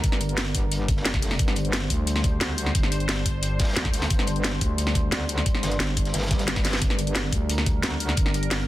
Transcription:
Already playing: analog synth pad G3 D4 A#4
0.04 wobble bass G1, kick, closed hi-hat
0.12 snare
0.21 closed hi-hat
0.29 closed hi-hat
0.37 snare, closed hi-hat
0.46 closed hi-hat
0.54 kick, closed hi-hat, open hi-hat
0.72 closed hi-hat
0.88 kick, closed hi-hat
0.97 wobble bass F#1, snare
1.05 snare, closed hi-hat
1.14 kick, snare
1.22 wobble bass F1, snare, open hi-hat
1.31 snare
1.39 wobble bass G1, analog synth pad C5, kick, closed hi-hat
1.48 snare
1.56 closed hi-hat
1.65 closed hi-hat
1.73 snare, closed hi-hat
1.82 snare
1.90 fm bass D2, kick, closed hi-hat, open hi-hat
2.07 closed hi-hat
2.16 snare
2.24 kick, closed hi-hat
2.41 wobble bass D2, snare, closed hi-hat
2.58 closed hi-hat, open hi-hat
2.66 snare
2.75 fm bass G1, kick, closed hi-hat
2.83 snare
2.92 closed hi-hat
3.00 closed hi-hat
3.09 snare, closed hi-hat
3.16 closed hi-hat
3.26 kick, closed hi-hat, open hi-hat
3.43 closed hi-hat
3.59 kick, snare, closed hi-hat
3.64 snare, closed hi-hat
3.68 snare, closed hi-hat
3.72 snare, closed hi-hat
3.76 wobble bass D2, snare, closed hi-hat
3.85 kick, snare
3.94 snare, open hi-hat
4.02 snare, closed hi-hat
4.10 wobble bass G1, kick, closed hi-hat
4.19 snare
4.27 closed hi-hat
4.36 closed hi-hat
4.44 snare, closed hi-hat
4.53 snare
4.61 fm bass D2, kick, closed hi-hat, open hi-hat
4.78 closed hi-hat
4.87 snare
4.95 kick, closed hi-hat
5.12 wobble bass D2, snare, closed hi-hat
5.29 closed hi-hat, open hi-hat
5.38 snare
5.46 kick, closed hi-hat
5.55 snare
5.63 wobble bass G1, snare, closed hi-hat
5.71 snare, closed hi-hat
5.80 fm bass G1, snare, closed hi-hat
5.97 kick, closed hi-hat, open hi-hat
6.05 snare, closed hi-hat
6.14 wobble bass G1, snare, closed hi-hat, swell
6.18 snare, closed hi-hat
6.22 snare, closed hi-hat
6.26 snare, closed hi-hat
6.31 kick, snare, closed hi-hat
6.39 snare, closed hi-hat
6.48 snare, closed hi-hat
6.56 kick, snare, closed hi-hat
6.64 snare, closed hi-hat, open hi-hat
6.69 snare, closed hi-hat
6.72 snare, closed hi-hat
6.77 snare, closed hi-hat
6.81 wobble bass G1, analog synth pad A#4, kick, closed hi-hat
6.90 snare
6.99 closed hi-hat
7.07 closed hi-hat
7.15 snare, closed hi-hat
7.25 snare
7.33 fm bass D2, kick, closed hi-hat, open hi-hat
7.49 closed hi-hat
7.58 snare
7.66 kick, closed hi-hat
7.82 wobble bass D2, snare, closed hi-hat
8.00 closed hi-hat, open hi-hat
8.09 snare
8.17 fm bass G1, kick, closed hi-hat
8.26 snare
8.34 closed hi-hat
8.43 closed hi-hat
8.51 snare, closed hi-hat
8.60 closed hi-hat

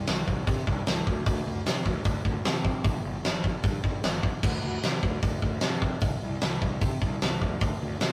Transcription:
0.07 picked electric bass C2, snare, open hi-hat
0.28 picked electric bass C2, kick
0.47 picked electric bass C3, kick, open hi-hat
0.67 picked electric bass C2, kick
0.87 picked electric bass C2, snare, open hi-hat
1.07 picked electric bass D2, kick
1.26 picked electric bass D2, kick, open hi-hat
1.47 picked electric bass D2
1.66 picked electric bass C3, snare, open hi-hat
1.85 picked electric bass D2, kick
2.04 picked electric bass D2, kick, open hi-hat
2.25 picked electric bass D2, kick
2.45 picked electric bass C3, snare, open hi-hat
2.65 kick
2.84 picked electric bass G1, kick, open hi-hat
3.04 picked electric bass G1
3.23 picked electric bass G1, snare, open hi-hat
3.44 picked electric bass G1, kick
3.63 picked electric bass G2, kick, open hi-hat
3.84 picked electric bass G1, kick
4.03 picked electric bass G1, snare, open hi-hat
4.23 kick
4.43 picked electric bass D2, kick, crash
4.64 picked electric bass D2
4.83 picked electric bass C3, snare, open hi-hat
5.03 picked electric bass D2, kick
5.23 picked electric bass D2, kick, open hi-hat
5.42 picked electric bass D2, kick
5.61 picked electric bass C3, snare, open hi-hat
5.82 kick
6.01 picked electric bass C2, kick, open hi-hat
6.22 picked electric bass C2
6.41 picked electric bass C2, snare, open hi-hat
6.62 picked electric bass C2, kick
6.81 picked electric bass C3, kick, open hi-hat
7.01 picked electric bass C2, kick
7.22 picked electric bass C2, snare, open hi-hat
7.42 picked electric bass D2, kick
7.61 picked electric bass D2, kick, open hi-hat
7.82 picked electric bass D2
8.01 picked electric bass C3, snare, open hi-hat

